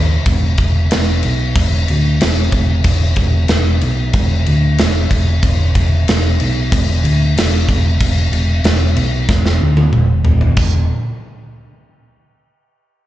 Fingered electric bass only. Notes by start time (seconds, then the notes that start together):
Already playing: D#2
0.26 E1
0.58 E1
0.93 E1
1.25 B1
1.55 E1
1.90 D2
2.22 E1
2.52 E1
2.85 E1
3.17 E1
3.50 E1
3.82 B1
4.14 E1
4.47 D2
4.80 E1
5.11 E1
5.43 E1
5.75 E1
6.08 E1
6.41 B1
6.72 E1
7.04 D2
7.37 E1
7.69 E1
8.01 E1
8.32 E1
8.64 E1
8.96 B1
9.29 E1
9.61 D2
9.92 E1
10.24 E1
10.57 E1